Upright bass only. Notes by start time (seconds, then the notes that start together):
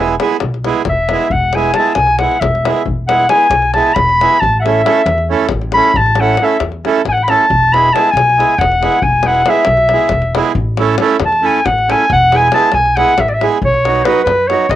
Already playing: E1
0.41 B1
0.86 E1
1.31 E1
1.96 B1
2.41 E1
2.85 E1
3.50 B1
3.96 E1
4.43 A1
5.06 E2
5.52 A1
5.96 A1
6.60 E2
7.05 A1
7.50 E1
8.13 B1
8.58 E1
9.02 E1
9.67 B1
10.11 E1
10.55 A1
11.20 E2
11.66 A1
12.10 E1
12.73 B1
13.18 A1
13.62 B1
14.26 F#2
14.69 B1